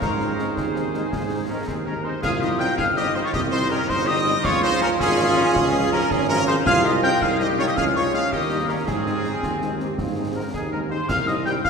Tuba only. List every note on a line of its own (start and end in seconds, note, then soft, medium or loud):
0.02 0.48 G#2 medium
0.57 1.03 D#2 medium
1.13 1.59 G#2 medium
1.68 2.14 D#2 medium
2.23 2.69 C2 medium
2.79 3.25 G1 medium
3.33 3.75 C2 medium
3.89 4.35 G1 medium
4.44 4.91 C#2 loud
5.00 5.46 G#1 loud
5.55 6.02 C#2 loud
6.11 6.57 G#1 loud
6.66 7.12 C2 loud
7.21 7.68 C2 loud
7.77 8.23 C#2 loud
8.32 8.78 D#2 medium
8.88 9.34 G#2 medium
9.43 9.89 D#2 medium
9.99 10.45 G#2 medium
10.54 11.00 D#2 medium
11.09 11.55 C2 medium
11.65 11.70 G1 medium